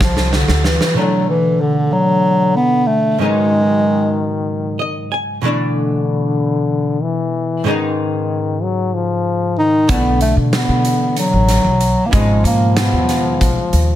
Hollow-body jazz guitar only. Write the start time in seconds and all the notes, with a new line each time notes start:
Already playing: D3 G3 C4 F5
0.94 B2 E3 A3 D4
3.18 G#2 C#3 F#3 B3 D#4
4.79 D#5
5.12 G#5
5.41 B2 E3 A3 D4
7.64 G#2 C#3 G#3 B3
7.68 D#4
9.88 B2 E3 A3
9.92 D4
12.11 B2 C#3 G#3 D#4